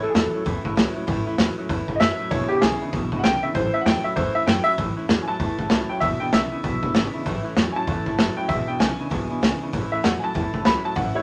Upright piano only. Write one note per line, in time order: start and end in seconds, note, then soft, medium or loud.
0.02 0.13 A4 medium
0.09 0.12 G#4 medium
0.14 0.45 A4 loud
1.96 1.98 D#5 medium
2.00 2.30 E5 loud
2.31 2.49 C#5 medium
2.49 2.55 G4 medium
2.56 2.59 G4 medium
2.61 2.92 G#4 loud
3.19 3.22 F#5 medium
3.23 3.42 G5 loud
3.43 3.55 E5 medium
3.55 3.73 C5 loud
3.74 3.85 E5 medium
3.81 3.84 F#5 medium
3.86 4.04 G5 loud
4.04 4.16 E5 medium
4.16 4.35 C5 loud
4.35 4.47 E5 loud
4.47 4.65 G5 medium
4.64 4.77 E5 loud
5.23 5.25 G#5 medium
5.28 5.88 A5 medium
5.89 6.01 G5 medium
6.00 6.20 E5 loud
6.20 6.32 G5 medium
6.33 7.23 E5 loud
7.72 7.74 G#5 medium
7.72 8.36 A5 loud
8.37 8.49 G5 medium
8.48 8.67 E5 medium
8.68 8.80 G5 medium
8.79 9.70 G#5 loud
9.92 10.03 E5 medium
10.04 10.22 F#5 medium
10.19 10.21 G#5 medium
10.24 10.65 A5 medium
10.66 10.84 B5 loud
10.85 10.96 A5 medium
10.96 11.14 F#5 loud
11.15 11.22 E4 medium
11.15 11.22 C#5 medium